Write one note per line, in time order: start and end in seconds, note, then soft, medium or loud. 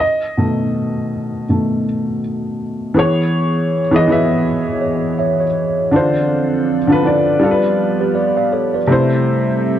0.00 2.18 D#5 loud
0.37 1.45 B2 medium
0.37 1.45 D#3 medium
0.37 1.46 A3 medium
1.49 1.83 B2 soft
1.49 1.83 D#3 soft
1.49 1.83 A3 soft
2.94 3.81 E3 medium
2.94 5.91 E3 medium
2.94 3.81 B3 medium
2.94 3.82 G#4 medium
2.94 5.91 C#5 medium
2.98 5.91 B3 medium
2.98 5.91 G#4 medium
2.98 3.83 C#5 medium
3.91 4.06 E3 medium
3.91 4.07 B3 medium
3.91 4.08 G#4 medium
3.96 4.08 D#5 loud
4.07 5.44 E3 medium
4.07 5.44 B3 medium
4.07 5.45 G#4 medium
4.12 5.46 E5 medium
4.81 5.17 C#5 medium
5.19 5.39 C#5 medium
5.19 5.40 E5 medium
5.40 5.91 C#5 medium
5.91 6.77 D3 medium
5.91 8.88 F3 medium
5.91 7.41 C4 medium
5.91 6.78 D4 medium
5.91 6.79 F4 medium
5.91 7.41 A4 medium
5.91 8.88 D5 loud
5.96 6.80 C5 medium
6.87 7.01 D3 medium
6.87 7.03 D4 medium
6.87 7.04 F4 medium
6.92 7.05 B4 loud
7.02 7.41 D3 medium
7.02 7.40 D4 medium
7.02 7.41 F4 medium
7.07 7.43 D5 medium
7.40 8.76 G3 medium
7.40 8.89 B3 medium
7.40 8.77 D4 medium
7.40 8.78 F4 medium
7.40 8.89 G4 medium
7.44 7.51 A4 medium
7.51 8.82 B4 medium
8.00 8.16 G4 medium
8.00 8.14 B4 medium
8.15 8.36 B4 medium
8.15 8.36 D5 medium
8.37 8.52 D5 medium
8.37 8.52 F5 medium
8.52 8.74 A4 medium
8.52 8.73 C#5 medium
8.74 9.10 B4 medium
8.74 9.10 D5 medium
8.87 9.73 C3 medium
8.87 9.79 G3 medium
8.87 9.74 A3 medium
8.87 9.79 C4 medium
8.87 9.75 E4 medium
8.87 9.79 A4 medium
8.87 9.79 E5 loud
8.92 9.76 C5 medium